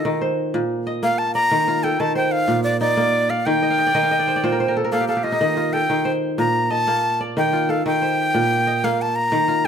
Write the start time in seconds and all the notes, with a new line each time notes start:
Already playing: F4 A4 D#5
0.05 D#3
0.21 C5
0.54 A#2
0.87 D#5
1.03 A#3 F5
1.18 A5
1.34 D5 A#5
1.51 D#3
1.68 F4
1.83 A4 G5
2.00 D#3 A5
2.15 C5 G5
2.32 F5
2.48 A#2
2.64 D5
2.81 D#4 D5
2.97 A#3
3.30 D5 F5
3.46 D#3 G5
3.63 D#5
3.70 F5
3.78 D#5
3.87 D5
3.95 D#3 D#5
4.03 F5
4.11 D#5
4.19 D5
4.28 C5
4.36 D5
4.44 A#2 C5
4.52 A#4
4.60 C5
4.68 A#4
4.77 A4
4.84 A#4
4.92 A#3 A4 F5
5.00 G4
5.08 A4 F5
5.17 G4
5.23 F4 D#5
5.32 D#4
5.41 D#3
5.57 F4
5.73 A4 G5
5.90 D#3
6.05 C5
6.38 A#2 A#5
6.71 D#5 A5
6.88 A#3
7.21 D5
7.37 D#3 G5
7.53 F4
7.69 A4 F5
7.86 D#3 G5
8.02 C5
8.34 A#2
8.67 D#5
8.84 A#3 F5
9.02 A5
9.16 A#5
9.32 D#3
9.48 F4